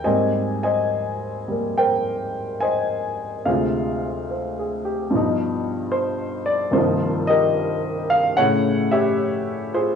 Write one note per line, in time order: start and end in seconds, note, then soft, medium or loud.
0.04 3.46 G#2 medium
0.04 1.47 G3 soft
0.04 1.50 A#3 soft
0.04 3.47 C4 medium
0.04 0.63 C5 medium
0.04 0.62 D#5 medium
0.04 0.60 G#5 medium
0.63 1.77 C5 medium
0.63 2.30 D#5 medium
0.63 1.80 G#5 medium
1.48 3.46 G3 soft
1.48 3.47 A#3 soft
1.78 3.43 A#4 medium
1.78 2.61 C5 medium
1.78 2.64 G5 medium
2.60 3.42 C5 medium
2.60 3.42 D#5 medium
2.60 3.48 G#5 medium
3.45 5.13 D2 medium
3.45 5.14 C3 medium
3.45 5.15 G#3 soft
3.45 4.57 G#4 soft
3.45 4.29 C5 soft
3.45 4.82 F5 medium
3.51 5.16 F4 medium
4.31 4.83 C5 soft
4.59 5.02 G#4 soft
4.85 5.28 G4 soft
5.10 6.71 G2 medium
5.10 6.76 B2 soft
5.10 6.75 F3 soft
5.15 6.73 D#4 medium
5.92 6.49 C5 medium
6.46 6.72 D5 medium
6.71 8.36 C2 medium
6.71 8.37 G2 medium
6.71 8.38 D#3 medium
6.71 8.34 F4 medium
6.71 7.31 C5 medium
6.75 8.39 F3 medium
6.75 6.80 D#4 medium
6.80 8.40 A#3 soft
6.80 8.41 D#4 medium
7.27 8.34 G4 medium
7.27 8.34 A#4 medium
7.27 8.06 D#5 medium
8.10 8.38 F5 medium
8.37 9.95 A2 medium
8.37 9.95 C#3 medium
8.37 9.95 A3 medium
8.37 9.95 C#4 medium
8.37 8.91 C#5 medium
8.37 8.88 F#5 loud
8.91 9.95 G4 medium
8.91 9.95 C#5 medium
8.91 9.76 E5 loud
9.74 9.95 F4 medium
9.74 9.95 G#4 medium
9.74 9.95 C5 medium